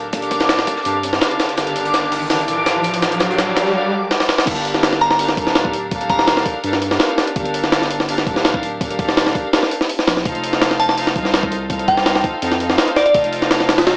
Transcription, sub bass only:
Already playing: D1
0.86 G2
1.58 G1
2.48 D1
4.47 G1
5.37 D1
6.64 G2
7.36 G1
8.27 D1
10.07 A#1
10.25 F1
11.16 C2
12.42 F2
13.14 F1

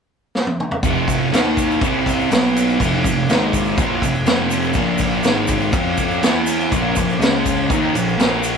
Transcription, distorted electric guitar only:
0.84 F2 C3 F3
1.32 D#3 A#3 D#4
1.82 C3 G3 C4
2.31 B2 F#3 B3
2.80 F2 C3 F3
3.07 F2 C3
3.29 G#2 D#3 G#3
3.80 A#2 F3 A#3
4.04 F2 C3
4.27 F2 C3 F3
4.77 A#2 F3 A#3
5.24 G#2 D#3 G#3
5.73 F3 C4 F4
6.23 E3 B3 E4
6.72 A#2 F3 A#3
6.96 A#2 F3
7.19 C#3 G#3 C#4
7.71 D#3 A#3 D#4
7.95 A#2 F3
8.18 A#2 F3 A#3

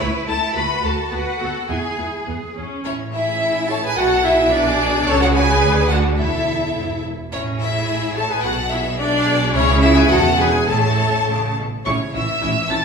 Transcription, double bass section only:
0.28 C#2
0.55 D2
0.83 D2
1.12 D2
1.40 D2
1.69 E2
1.98 E2
2.27 E2
2.56 E2
2.85 A1
3.97 B1
5.08 C#2
5.63 D2
6.19 E1
6.76 E1
7.33 A1
8.44 B1
9.54 C#2
10.11 E1
10.69 A1
11.86 A1
12.15 A1
12.43 A1
12.70 A1

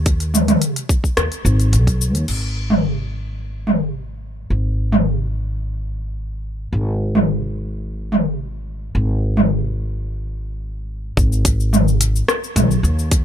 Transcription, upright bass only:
Already playing: D#2
1.17 D#2
1.45 G#1
1.73 B1
2.15 D#2
2.28 G#1
4.50 G#1
6.73 G#1
8.95 G#1
11.17 G#1
12.56 B1
12.83 D#2

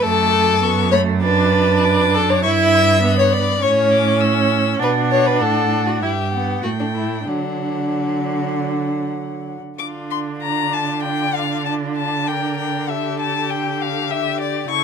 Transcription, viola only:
0.03 A3
0.63 B3
0.92 A3
1.23 D4
2.44 E4
3.03 B3
3.61 C#4
4.80 D4
6.02 E4
6.33 B3
6.64 A3
7.27 F#3
9.80 D4
12.88 G4
14.71 E4

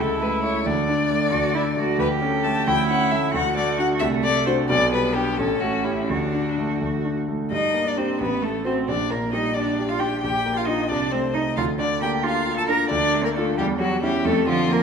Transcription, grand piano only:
0.00 C#2
0.21 A3
0.43 E4 A4
0.66 D2
0.89 D4
1.10 A3
1.32 D2
1.54 D4
1.77 A3
1.98 D2
2.22 C#4
2.45 A3
2.67 D2
2.91 C#4
3.12 A3
3.34 D2
3.57 A3
3.79 D4 F#4
4.02 C2
4.23 A3
4.46 D4 F#4
4.70 B1
4.93 G3
5.16 D4 G4
5.38 A1
5.62 A3
5.85 C#4 G4
6.10 D2
6.33 D4
6.58 A3
6.81 D2
7.05 D4
7.28 A3
7.51 G2
7.74 A#3
7.97 D4 G4
8.20 A1
8.43 A3
8.65 C4 F#4
8.88 A#1
9.10 A#2
9.33 G3
9.56 D4
9.79 G4
10.00 D4
10.24 A#1
10.46 A#3
10.67 D4 F4
10.91 C2
11.13 A3
11.34 D#4
11.57 D2
11.80 D3
12.02 A#3
12.24 D4
12.46 F4
12.68 D4
12.91 D2
13.14 A3
13.37 D4 F4
13.59 E2
13.81 G3
14.03 C#4 E4
14.25 F2
14.47 D3
14.71 F3

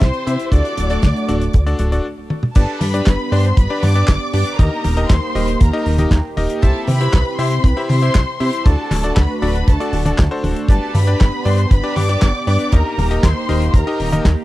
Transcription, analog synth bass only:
0.02 C2
0.27 C3
0.52 D2
0.78 D1
1.03 D2
1.29 D1
1.54 D2
1.79 D1
2.56 G1
2.81 G2
3.07 G1
3.32 G2
3.57 G1
3.83 G2
4.08 G1
4.34 G2
4.59 D#2
4.85 D#1
5.10 D#2
5.35 D#1
5.61 D#2
5.86 D#1
6.11 D#2
6.37 D#1
6.63 C2
6.88 C3
7.13 C2
7.39 C3
7.64 C2
7.89 C3
8.15 C2
8.40 C3
8.66 D2
8.91 D1
9.17 D2
9.42 D1
9.68 D2
9.93 D1
10.19 D2
10.44 D1
10.69 G1
10.95 G2
11.21 G1
11.45 G2
11.71 G1
11.96 G2
12.22 G1
12.47 G2
12.73 D#2
12.98 D#1
13.23 D#2
13.49 D#1
13.74 D#2
14.00 D#1
14.25 D#2

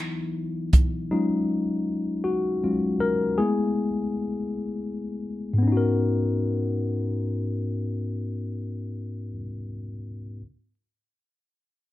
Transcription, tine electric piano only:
Already playing: E3 F#3 B3 D#4 E4
1.11 F#3 G#3 C#4 D#4 F4
2.24 F#4
2.63 F#3 G#3 C#4 F4
3.00 A#4
3.38 G#3 A3 B3 E4 G#4
5.54 G#2
5.58 B3
5.63 C#4
5.68 D#4
5.72 F#4
5.77 A#4

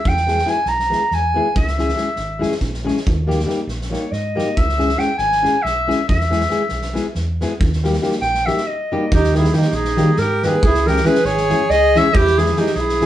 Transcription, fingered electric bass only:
0.06 E2
0.66 B1
1.11 E2
1.56 C#2
2.18 G#1
2.63 A#1
3.07 D#2
3.67 A#1
4.12 G#2
4.57 C#2
5.19 G#1
5.64 B1
6.09 E2
6.71 B1
7.15 E2
7.60 D#2
8.22 A#1
9.12 D#2
9.73 A#1
10.18 G#2
10.63 C#2
11.25 G#1
11.69 C#2
12.14 E2
12.76 B1

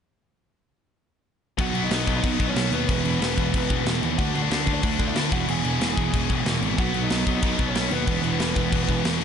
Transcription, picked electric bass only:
1.58 B1
1.74 B1
1.90 B1
2.08 B1
2.23 B1
2.40 B1
2.55 B1
2.70 D#2
2.89 E1
3.04 E1
3.21 E1
3.37 E1
3.54 E1
3.70 E1
3.86 E1
4.02 D#2
4.19 D2
4.34 D2
4.50 D2
4.66 D2
4.83 D2
4.99 D2
5.15 D2
5.32 E1
5.48 E1
5.64 E1
5.80 E1
5.97 E1
6.13 E1
6.29 E1
6.45 E1
6.61 G#1
6.78 B1
6.95 B1
7.11 B1
7.26 B1
7.43 B1
7.59 B1
7.75 B1
7.91 D#2
8.07 E1
8.22 E1
8.40 E1
8.56 E1
8.72 E1
8.88 E1
9.04 E1
9.21 G#1

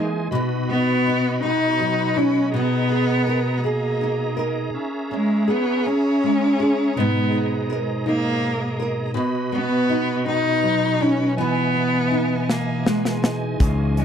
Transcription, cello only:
0.69 B3
1.43 D#4
2.17 C#4
2.54 B3
3.57 B3
3.65 A#3
5.12 G#3
5.49 B3
5.86 C#4
6.97 B3
8.06 A#3
9.52 B3
10.27 D#4
11.01 C#4
11.39 B3
12.51 A#3
13.98 G#3

